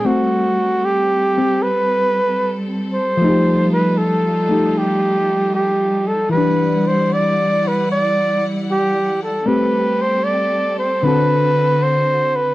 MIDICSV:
0, 0, Header, 1, 4, 480
1, 0, Start_track
1, 0, Tempo, 784314
1, 29, Time_signature, 4, 2, 24, 8
1, 7678, End_track
2, 0, Start_track
2, 0, Title_t, "Flugelhorn"
2, 0, Program_c, 0, 56
2, 36, Note_on_c, 0, 66, 71
2, 520, Note_on_c, 0, 67, 77
2, 529, Note_off_c, 0, 66, 0
2, 994, Note_on_c, 0, 71, 93
2, 1003, Note_off_c, 0, 67, 0
2, 1573, Note_off_c, 0, 71, 0
2, 1796, Note_on_c, 0, 72, 74
2, 2251, Note_off_c, 0, 72, 0
2, 2285, Note_on_c, 0, 71, 74
2, 2435, Note_on_c, 0, 69, 69
2, 2444, Note_off_c, 0, 71, 0
2, 2926, Note_on_c, 0, 67, 84
2, 2935, Note_off_c, 0, 69, 0
2, 3392, Note_off_c, 0, 67, 0
2, 3396, Note_on_c, 0, 67, 67
2, 3716, Note_on_c, 0, 69, 65
2, 3725, Note_off_c, 0, 67, 0
2, 3860, Note_off_c, 0, 69, 0
2, 3863, Note_on_c, 0, 71, 74
2, 4208, Note_on_c, 0, 72, 76
2, 4217, Note_off_c, 0, 71, 0
2, 4363, Note_on_c, 0, 74, 81
2, 4372, Note_off_c, 0, 72, 0
2, 4699, Note_on_c, 0, 71, 74
2, 4708, Note_off_c, 0, 74, 0
2, 4840, Note_off_c, 0, 71, 0
2, 4844, Note_on_c, 0, 74, 91
2, 5189, Note_off_c, 0, 74, 0
2, 5334, Note_on_c, 0, 67, 81
2, 5628, Note_off_c, 0, 67, 0
2, 5651, Note_on_c, 0, 69, 69
2, 5797, Note_on_c, 0, 71, 78
2, 5806, Note_off_c, 0, 69, 0
2, 6131, Note_on_c, 0, 72, 74
2, 6140, Note_off_c, 0, 71, 0
2, 6267, Note_on_c, 0, 74, 78
2, 6276, Note_off_c, 0, 72, 0
2, 6595, Note_off_c, 0, 74, 0
2, 6602, Note_on_c, 0, 72, 79
2, 6758, Note_on_c, 0, 71, 94
2, 6767, Note_off_c, 0, 72, 0
2, 7238, Note_on_c, 0, 72, 86
2, 7248, Note_off_c, 0, 71, 0
2, 7565, Note_on_c, 0, 71, 77
2, 7575, Note_off_c, 0, 72, 0
2, 7678, Note_off_c, 0, 71, 0
2, 7678, End_track
3, 0, Start_track
3, 0, Title_t, "String section"
3, 0, Program_c, 1, 48
3, 0, Note_on_c, 1, 60, 54
3, 30, Note_on_c, 1, 55, 64
3, 31, Note_on_c, 1, 69, 52
3, 1921, Note_off_c, 1, 60, 0
3, 1948, Note_on_c, 1, 63, 49
3, 1949, Note_on_c, 1, 65, 56
3, 3847, Note_off_c, 1, 69, 0
3, 3852, Note_off_c, 1, 63, 0
3, 3853, Note_off_c, 1, 65, 0
3, 3859, Note_on_c, 1, 74, 68
3, 3860, Note_on_c, 1, 78, 56
3, 3861, Note_on_c, 1, 64, 51
3, 5767, Note_off_c, 1, 74, 0
3, 5768, Note_off_c, 1, 64, 0
3, 5768, Note_off_c, 1, 78, 0
3, 5791, Note_on_c, 1, 69, 57
3, 5793, Note_on_c, 1, 67, 63
3, 5797, Note_on_c, 1, 60, 54
3, 6726, Note_off_c, 1, 55, 0
3, 6741, Note_off_c, 1, 67, 0
3, 6746, Note_on_c, 1, 50, 60
3, 6749, Note_on_c, 1, 66, 59
3, 7678, Note_off_c, 1, 50, 0
3, 7678, Note_off_c, 1, 60, 0
3, 7678, Note_off_c, 1, 66, 0
3, 7678, Note_off_c, 1, 69, 0
3, 7678, End_track
4, 0, Start_track
4, 0, Title_t, "Hollow-body jazz guitar"
4, 0, Program_c, 2, 26
4, 28, Note_on_c, 2, 57, 41
4, 36, Note_on_c, 2, 60, 45
4, 836, Note_off_c, 2, 60, 0
4, 843, Note_on_c, 2, 60, 29
4, 854, Note_on_c, 2, 67, 31
4, 1942, Note_on_c, 2, 53, 46
4, 1947, Note_off_c, 2, 57, 0
4, 1952, Note_off_c, 2, 60, 0
4, 1957, Note_off_c, 2, 67, 0
4, 1969, Note_on_c, 2, 57, 39
4, 1986, Note_on_c, 2, 63, 48
4, 2008, Note_on_c, 2, 67, 46
4, 2741, Note_off_c, 2, 57, 0
4, 2748, Note_on_c, 2, 57, 32
4, 2752, Note_off_c, 2, 63, 0
4, 2760, Note_on_c, 2, 63, 31
4, 2761, Note_off_c, 2, 67, 0
4, 2768, Note_on_c, 2, 67, 37
4, 3848, Note_off_c, 2, 53, 0
4, 3851, Note_on_c, 2, 52, 34
4, 3870, Note_off_c, 2, 57, 0
4, 3876, Note_off_c, 2, 63, 0
4, 3879, Note_on_c, 2, 55, 37
4, 3880, Note_off_c, 2, 67, 0
4, 3900, Note_on_c, 2, 62, 38
4, 5782, Note_off_c, 2, 52, 0
4, 5786, Note_off_c, 2, 55, 0
4, 5788, Note_on_c, 2, 57, 36
4, 5796, Note_off_c, 2, 62, 0
4, 5798, Note_on_c, 2, 60, 40
4, 5803, Note_on_c, 2, 67, 39
4, 6748, Note_off_c, 2, 57, 0
4, 6749, Note_on_c, 2, 50, 47
4, 6753, Note_off_c, 2, 60, 0
4, 6756, Note_off_c, 2, 67, 0
4, 6761, Note_on_c, 2, 60, 47
4, 6771, Note_on_c, 2, 66, 46
4, 6779, Note_on_c, 2, 69, 44
4, 7678, Note_off_c, 2, 50, 0
4, 7678, Note_off_c, 2, 60, 0
4, 7678, Note_off_c, 2, 66, 0
4, 7678, Note_off_c, 2, 69, 0
4, 7678, End_track
0, 0, End_of_file